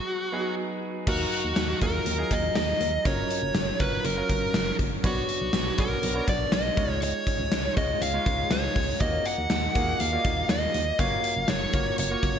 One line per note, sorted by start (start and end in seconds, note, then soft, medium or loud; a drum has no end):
0.00 0.32 F#3 medium
0.00 0.32 B3 medium
0.00 0.33 D#4 medium
0.00 0.54 F#4 medium
0.00 0.33 G#4 medium
0.32 0.79 F#3 medium
0.32 0.79 B3 medium
0.32 0.79 D#4 medium
0.32 0.80 G#4 medium
1.06 1.25 D#2 loud
1.06 1.53 F#3 medium
1.06 1.54 D#4 medium
1.06 1.78 F#4 medium
1.06 1.54 A#4 medium
1.06 1.54 F5 medium
1.06 kick loud
1.06 crash medium
1.32 closed hi-hat medium
1.44 1.53 D#2 medium
1.56 1.74 D#2 medium
1.56 snare medium
1.56 closed hi-hat medium
1.81 2.00 D#2 medium
1.81 2.05 F#3 medium
1.81 2.05 D#4 medium
1.81 2.05 F4 medium
1.81 2.05 A#4 medium
1.81 2.33 A#4 medium
1.81 kick medium
1.81 closed hi-hat medium
2.06 2.24 D#2 loud
2.06 closed hi-hat medium
2.18 2.73 F#3 medium
2.18 2.73 D#4 medium
2.18 2.73 F4 medium
2.18 2.73 G#4 medium
2.31 2.49 D#2 loud
2.31 2.55 D#5 medium
2.31 kick medium
2.31 closed hi-hat medium
2.55 2.74 D#2 loud
2.55 3.06 D#5 loud
2.55 snare loud
2.55 closed hi-hat medium
2.81 2.98 D#2 loud
2.81 closed hi-hat medium
3.04 3.23 F#1 loud
3.04 3.51 F#3 medium
3.04 3.52 C#4 medium
3.04 3.52 F4 medium
3.04 3.52 A#4 medium
3.04 3.83 C#5 loud
3.04 kick loud
3.04 closed hi-hat medium
3.31 closed hi-hat medium
3.42 3.52 F#1 medium
3.55 3.73 F#1 loud
3.55 snare loud
3.55 closed hi-hat medium
3.79 3.98 F#1 loud
3.79 4.03 F#3 medium
3.79 4.03 C#4 medium
3.79 4.03 F4 medium
3.79 4.03 A#4 medium
3.79 4.05 B4 medium
3.79 kick medium
3.79 closed hi-hat medium
4.05 4.23 F#1 medium
4.05 4.76 A#4 medium
4.05 closed hi-hat medium
4.16 4.71 F#3 medium
4.16 4.71 C#4 medium
4.16 4.72 F4 medium
4.16 4.72 A#4 medium
4.29 4.47 F#1 medium
4.29 kick medium
4.29 closed hi-hat medium
4.54 4.72 F#1 medium
4.54 snare loud
4.54 closed hi-hat medium
4.79 4.97 F#1 loud
4.79 kick medium
4.79 closed hi-hat medium
5.03 5.22 B1 medium
5.03 5.50 B3 medium
5.03 5.50 D4 medium
5.03 5.51 F#4 medium
5.03 5.82 F#4 medium
5.03 5.51 C#5 medium
5.03 kick loud
5.03 closed hi-hat medium
5.29 closed hi-hat medium
5.41 5.50 B1 medium
5.53 5.71 B1 loud
5.53 snare medium
5.53 closed hi-hat medium
5.77 5.96 B1 medium
5.77 6.01 B3 medium
5.77 6.01 D4 medium
5.77 6.01 F#4 medium
5.77 6.25 A#4 medium
5.77 6.02 C#5 medium
5.77 kick medium
5.77 closed hi-hat medium
6.03 6.21 B1 loud
6.03 closed hi-hat medium
6.14 6.69 B3 medium
6.14 6.69 D4 medium
6.14 6.70 F#4 medium
6.14 6.70 C#5 medium
6.28 6.46 B1 loud
6.28 6.53 D5 medium
6.28 kick medium
6.28 closed hi-hat medium
6.52 6.71 B1 loud
6.52 6.99 D#5 medium
6.52 snare loud
6.52 closed hi-hat medium
6.77 7.13 C#2 loud
6.77 7.56 G#3 medium
6.77 7.57 D#4 medium
6.77 7.57 F4 medium
6.77 7.57 C#5 medium
6.77 kick loud
6.77 closed hi-hat medium
7.02 7.73 C#5 medium
7.02 closed hi-hat medium
7.27 kick medium
7.27 closed hi-hat medium
7.40 7.48 C#2 medium
7.52 7.70 C#2 loud
7.52 snare loud
7.52 closed hi-hat medium
7.76 7.95 C#2 loud
7.76 8.00 G#3 medium
7.76 8.00 D#4 medium
7.76 8.00 F4 medium
7.76 8.00 C#5 medium
7.76 8.03 D#5 medium
7.76 kick loud
7.76 closed hi-hat medium
8.01 8.19 C#2 loud
8.01 8.53 F5 loud
8.01 closed hi-hat medium
8.13 8.68 G#3 medium
8.13 8.68 D#4 medium
8.13 8.68 F4 medium
8.13 8.69 C#5 medium
8.26 8.44 C#2 loud
8.26 kick medium
8.26 closed hi-hat medium
8.51 8.69 C#2 medium
8.51 9.01 C#5 medium
8.51 snare loud
8.51 closed hi-hat medium
8.76 8.94 C#2 loud
8.76 kick medium
8.76 open hi-hat medium
9.00 9.18 D#2 loud
9.00 9.47 A#3 medium
9.00 9.47 F4 medium
9.00 9.47 F#4 medium
9.00 9.26 D#5 loud
9.00 9.48 D#5 medium
9.00 kick loud
9.00 closed hi-hat medium
9.26 10.02 F#5 loud
9.26 closed hi-hat medium
9.38 9.47 D#2 medium
9.50 9.69 D#2 loud
9.50 snare loud
9.50 closed hi-hat medium
9.75 9.93 D#2 loud
9.75 9.98 A#3 medium
9.75 9.98 F4 medium
9.75 9.99 F#4 medium
9.75 9.99 G#4 medium
9.75 kick medium
9.75 closed hi-hat medium
10.00 10.18 D#2 loud
10.00 10.50 F5 medium
10.00 closed hi-hat medium
10.12 10.66 A#3 medium
10.12 10.66 F4 medium
10.12 10.67 F#4 medium
10.12 10.19 D5 medium
10.19 10.70 D#5 medium
10.25 10.43 D#2 loud
10.25 kick medium
10.25 closed hi-hat medium
10.49 10.68 D#2 loud
10.49 10.99 D#5 medium
10.49 snare loud
10.49 closed hi-hat medium
10.74 10.92 D#2 loud
10.74 closed hi-hat medium
10.99 11.17 F#1 loud
10.99 11.45 A#3 medium
10.99 11.46 F4 medium
10.99 11.46 F#4 medium
10.99 11.46 C#5 medium
10.99 11.50 F5 loud
10.99 kick loud
10.99 closed hi-hat medium
11.24 closed hi-hat medium
11.36 11.45 F#1 medium
11.48 11.67 F#1 loud
11.48 11.95 C#5 medium
11.48 snare medium
11.48 closed hi-hat medium
11.73 11.91 F#1 loud
11.73 11.96 A#3 medium
11.73 11.97 F4 medium
11.73 11.97 F#4 medium
11.73 11.97 C#5 medium
11.73 kick medium
11.73 closed hi-hat medium
11.98 12.16 F#1 loud
11.98 12.39 C#5 medium
11.98 closed hi-hat medium
12.10 12.39 A#3 medium
12.10 12.39 F4 medium
12.10 12.39 F#4 medium
12.10 12.39 C#5 medium
12.23 12.39 F#1 loud
12.23 kick medium
12.23 closed hi-hat medium